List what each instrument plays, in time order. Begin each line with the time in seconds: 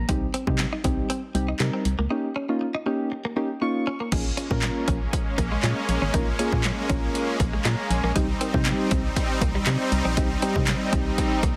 0.08 fm bass C2, synth keys G3 C4 D#4 G4, clean electric guitar D#4, kick, closed hi-hat
0.34 clean electric guitar C4, closed hi-hat
0.47 fm bass C3, synth keys G3 C4 D#4 G4, muted clean electric guitar stroke, kick
0.59 muted clean electric guitar stroke, snare, clap, closed hi-hat
0.73 clean electric guitar D#4
0.84 fm bass C2, synth keys G3 C4 D#4 G4, clean electric guitar C4, kick, closed hi-hat
1.10 clean electric guitar C4, closed hi-hat
1.34 fm bass C2, synth keys G3 C4 D#4 G4, muted clean electric guitar stroke, closed hi-hat
1.48 clean electric guitar D#4
1.60 fm bass C3, synth keys G3 C4 D#4 A#4, snare, clap, closed hi-hat
1.73 clean electric guitar C4
1.85 fm bass C2, muted clean electric guitar stroke, closed hi-hat
1.99 fm bass C#2, clean electric guitar A#3
2.10 synth keys A#3 C#4 D#4 G4, clean electric guitar D#4
2.36 clean electric guitar C#4
2.49 synth keys A#3 C#4 D#4 F4, muted clean electric guitar stroke
2.61 muted clean electric guitar stroke
2.75 clean electric guitar D#4
2.86 synth keys A#3 C#4 D#4 G4, clean electric guitar C#4
3.12 muted clean electric guitar stroke
3.25 clean electric guitar A#3
3.36 synth keys A#3 C#4 D#4 G4, clean electric guitar A#3
3.61 synth keys A#3 C#4 D#4 F4 C#6, muted clean electric guitar stroke
3.87 clean electric guitar C#4
4.00 clean electric guitar A#3
4.12 fm bass A#1, supersaw synth G#3 A#3 C#4, synth keys A#3 C#4 F4 G#4, clean electric guitar D#4, kick, closed hi-hat, crash
4.37 clean electric guitar C#4, synth keys F4 G#4, closed hi-hat
4.51 fm bass A#2, synth keys A#3 C#4 F4 A#4, muted clean electric guitar stroke, kick
4.62 snare, clap, closed hi-hat
4.88 fm bass A#1, clean electric guitar C#4, kick, closed hi-hat
5.13 muted clean electric guitar stroke, kick, closed hi-hat
5.38 fm bass A#1, clean electric guitar A#3, kick, closed hi-hat
5.52 clean electric guitar G#3
5.63 fm bass A#2, clean electric guitar G#3, snare, clap, closed hi-hat
5.89 fm bass A#1, muted clean electric guitar stroke, closed hi-hat
6.02 fm bass G#1, clean electric guitar C#4
6.14 fm bass A#1, synth keys A#3 C#4 F4 A#4, clean electric guitar D#4, kick, closed hi-hat
6.39 synth keys A#3 C#4 F4 G#4, clean electric guitar C#4, closed hi-hat
6.52 fm bass A#2, muted clean electric guitar stroke, kick
6.64 snare, clap, closed hi-hat
6.89 fm bass A#1, synth keys A#3 C#4 F4 A#4, clean electric guitar C#4, kick, closed hi-hat
7.15 muted clean electric guitar stroke, closed hi-hat
7.40 fm bass A#1, clean electric guitar A#3, kick, closed hi-hat
7.53 clean electric guitar G#3
7.65 fm bass A#2, clean electric guitar G#3, synth keys A#5, snare, clap, closed hi-hat
7.79 muted clean electric guitar stroke
7.90 fm bass A#1, synth keys G#5, closed hi-hat
8.04 fm bass A#1, clean electric guitar A#3
8.15 fm bass C2, synth keys G3 C4 D#4 G4, supersaw synth G3 C4 D#4, clean electric guitar D#4, kick, closed hi-hat
8.41 clean electric guitar C4, synth keys D#4 A#4, closed hi-hat
8.54 fm bass C3, synth keys G3 C4 D#4 G4, muted clean electric guitar stroke, kick
8.66 snare, clap, closed hi-hat
8.91 fm bass C2, clean electric guitar C4, kick, closed hi-hat
9.16 muted clean electric guitar stroke, kick, closed hi-hat
9.41 fm bass C2, clean electric guitar A#3, kick, closed hi-hat
9.55 clean electric guitar G3
9.66 fm bass C3, clean electric guitar G3, snare, clap, closed hi-hat
9.92 fm bass C2, muted clean electric guitar stroke, closed hi-hat
10.05 fm bass A#1, clean electric guitar C4
10.17 fm bass C2, synth keys G3 C4 D#4 G4, clean electric guitar D#4, kick, closed hi-hat
10.42 synth keys G3 C4 D#4 G4, clean electric guitar C4, closed hi-hat
10.56 fm bass C3, muted clean electric guitar stroke, kick
10.67 snare, clap, closed hi-hat
10.92 fm bass C2, synth keys G3 C4 D#4 G4, clean electric guitar C4, kick, closed hi-hat
11.18 muted clean electric guitar stroke, kick, closed hi-hat
11.43 fm bass C2, clean electric guitar A#3, kick, closed hi-hat